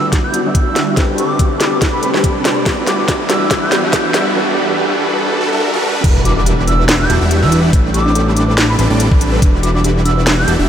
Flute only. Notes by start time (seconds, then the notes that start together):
0.24 G6
0.66 E6
1.18 D6
1.60 D6
1.72 D6
1.93 B5
2.03 B5
2.87 D6
2.99 D6
3.30 E6
3.62 G6
6.25 D6
6.37 D6
6.67 E6
7.00 G6
7.42 E6
7.94 D6
8.36 D6
8.48 D6
8.69 B5
8.79 B5
9.63 D6
9.75 D6
10.05 E6
10.38 G6